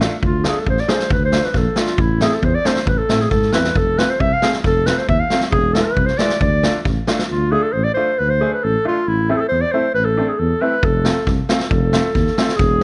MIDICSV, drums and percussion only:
0, 0, Header, 1, 2, 480
1, 0, Start_track
1, 0, Tempo, 441826
1, 248, Time_signature, 2, 2, 24, 8
1, 13940, End_track
2, 0, Start_track
2, 0, Title_t, "Drums"
2, 9, Note_on_c, 9, 38, 86
2, 117, Note_off_c, 9, 38, 0
2, 246, Note_on_c, 9, 36, 75
2, 355, Note_off_c, 9, 36, 0
2, 480, Note_on_c, 9, 38, 89
2, 589, Note_off_c, 9, 38, 0
2, 722, Note_on_c, 9, 36, 59
2, 831, Note_off_c, 9, 36, 0
2, 840, Note_on_c, 9, 38, 24
2, 949, Note_off_c, 9, 38, 0
2, 961, Note_on_c, 9, 38, 91
2, 1070, Note_off_c, 9, 38, 0
2, 1080, Note_on_c, 9, 38, 61
2, 1189, Note_off_c, 9, 38, 0
2, 1200, Note_on_c, 9, 36, 80
2, 1309, Note_off_c, 9, 36, 0
2, 1435, Note_on_c, 9, 38, 84
2, 1543, Note_off_c, 9, 38, 0
2, 1560, Note_on_c, 9, 38, 28
2, 1669, Note_off_c, 9, 38, 0
2, 1674, Note_on_c, 9, 38, 27
2, 1676, Note_on_c, 9, 36, 62
2, 1783, Note_off_c, 9, 38, 0
2, 1785, Note_off_c, 9, 36, 0
2, 1909, Note_on_c, 9, 38, 89
2, 2018, Note_off_c, 9, 38, 0
2, 2022, Note_on_c, 9, 38, 57
2, 2131, Note_off_c, 9, 38, 0
2, 2153, Note_on_c, 9, 36, 77
2, 2262, Note_off_c, 9, 36, 0
2, 2396, Note_on_c, 9, 38, 86
2, 2505, Note_off_c, 9, 38, 0
2, 2519, Note_on_c, 9, 38, 31
2, 2627, Note_off_c, 9, 38, 0
2, 2637, Note_on_c, 9, 36, 59
2, 2746, Note_off_c, 9, 36, 0
2, 2879, Note_on_c, 9, 38, 83
2, 2987, Note_off_c, 9, 38, 0
2, 2997, Note_on_c, 9, 38, 61
2, 3105, Note_off_c, 9, 38, 0
2, 3117, Note_on_c, 9, 36, 74
2, 3226, Note_off_c, 9, 36, 0
2, 3357, Note_on_c, 9, 38, 74
2, 3465, Note_off_c, 9, 38, 0
2, 3478, Note_on_c, 9, 38, 30
2, 3587, Note_off_c, 9, 38, 0
2, 3598, Note_on_c, 9, 36, 65
2, 3599, Note_on_c, 9, 38, 21
2, 3706, Note_off_c, 9, 36, 0
2, 3708, Note_off_c, 9, 38, 0
2, 3715, Note_on_c, 9, 38, 21
2, 3824, Note_off_c, 9, 38, 0
2, 3828, Note_on_c, 9, 38, 88
2, 3936, Note_off_c, 9, 38, 0
2, 3954, Note_on_c, 9, 38, 57
2, 4063, Note_off_c, 9, 38, 0
2, 4080, Note_on_c, 9, 36, 75
2, 4188, Note_off_c, 9, 36, 0
2, 4327, Note_on_c, 9, 38, 85
2, 4435, Note_off_c, 9, 38, 0
2, 4566, Note_on_c, 9, 36, 65
2, 4675, Note_off_c, 9, 36, 0
2, 4802, Note_on_c, 9, 38, 94
2, 4911, Note_off_c, 9, 38, 0
2, 4921, Note_on_c, 9, 38, 54
2, 5029, Note_off_c, 9, 38, 0
2, 5044, Note_on_c, 9, 36, 70
2, 5048, Note_on_c, 9, 38, 24
2, 5153, Note_off_c, 9, 36, 0
2, 5156, Note_off_c, 9, 38, 0
2, 5282, Note_on_c, 9, 38, 81
2, 5390, Note_off_c, 9, 38, 0
2, 5405, Note_on_c, 9, 38, 29
2, 5514, Note_off_c, 9, 38, 0
2, 5526, Note_on_c, 9, 36, 67
2, 5634, Note_off_c, 9, 36, 0
2, 5759, Note_on_c, 9, 38, 80
2, 5868, Note_off_c, 9, 38, 0
2, 5873, Note_on_c, 9, 38, 66
2, 5982, Note_off_c, 9, 38, 0
2, 6002, Note_on_c, 9, 36, 78
2, 6111, Note_off_c, 9, 36, 0
2, 6243, Note_on_c, 9, 38, 88
2, 6352, Note_off_c, 9, 38, 0
2, 6482, Note_on_c, 9, 36, 64
2, 6591, Note_off_c, 9, 36, 0
2, 6604, Note_on_c, 9, 38, 26
2, 6712, Note_off_c, 9, 38, 0
2, 6720, Note_on_c, 9, 38, 90
2, 6829, Note_off_c, 9, 38, 0
2, 6838, Note_on_c, 9, 38, 65
2, 6947, Note_off_c, 9, 38, 0
2, 6961, Note_on_c, 9, 36, 74
2, 7070, Note_off_c, 9, 36, 0
2, 7205, Note_on_c, 9, 38, 85
2, 7314, Note_off_c, 9, 38, 0
2, 7446, Note_on_c, 9, 36, 69
2, 7448, Note_on_c, 9, 38, 23
2, 7554, Note_off_c, 9, 36, 0
2, 7556, Note_off_c, 9, 38, 0
2, 7684, Note_on_c, 9, 38, 90
2, 7792, Note_off_c, 9, 38, 0
2, 7809, Note_on_c, 9, 38, 66
2, 7918, Note_off_c, 9, 38, 0
2, 11765, Note_on_c, 9, 36, 79
2, 11874, Note_off_c, 9, 36, 0
2, 12001, Note_on_c, 9, 38, 85
2, 12109, Note_off_c, 9, 38, 0
2, 12243, Note_on_c, 9, 36, 63
2, 12244, Note_on_c, 9, 38, 25
2, 12351, Note_off_c, 9, 36, 0
2, 12353, Note_off_c, 9, 38, 0
2, 12482, Note_on_c, 9, 38, 84
2, 12591, Note_off_c, 9, 38, 0
2, 12598, Note_on_c, 9, 38, 59
2, 12707, Note_off_c, 9, 38, 0
2, 12720, Note_on_c, 9, 36, 84
2, 12829, Note_off_c, 9, 36, 0
2, 12958, Note_on_c, 9, 38, 87
2, 13067, Note_off_c, 9, 38, 0
2, 13201, Note_on_c, 9, 36, 64
2, 13204, Note_on_c, 9, 38, 24
2, 13309, Note_off_c, 9, 36, 0
2, 13313, Note_off_c, 9, 38, 0
2, 13327, Note_on_c, 9, 38, 22
2, 13435, Note_off_c, 9, 38, 0
2, 13447, Note_on_c, 9, 38, 94
2, 13555, Note_off_c, 9, 38, 0
2, 13564, Note_on_c, 9, 38, 61
2, 13672, Note_off_c, 9, 38, 0
2, 13681, Note_on_c, 9, 36, 87
2, 13684, Note_on_c, 9, 38, 27
2, 13790, Note_off_c, 9, 36, 0
2, 13792, Note_off_c, 9, 38, 0
2, 13940, End_track
0, 0, End_of_file